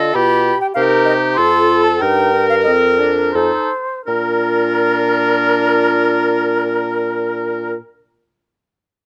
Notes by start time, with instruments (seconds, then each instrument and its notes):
Already playing: bassoon D3, french horn F4, oboe A4, flute D#5
0.13 bassoon B2, clarinet F4, french horn G4, oboe G4, flute B5
0.61 flute G5
0.74 bassoon C3, clarinet D#4, oboe G4, french horn A#4, flute F5
1.05 flute D#5
1.35 bassoon F2, clarinet F4, french horn A4, oboe A4, flute C6
1.84 flute A5
1.99 bassoon G2, clarinet D#4, french horn A#4, oboe A#4, flute G5
2.34 clarinet D4
2.50 flute F5
2.63 bassoon F2, clarinet C4, oboe A#4, flute D#5
2.98 clarinet D4, flute D5
3.16 flute A#4
3.32 bassoon F2, clarinet D#4, french horn A4, oboe A4, flute C5
4.05 bassoon A#2, french horn D4, clarinet F4, flute A#4, oboe A#4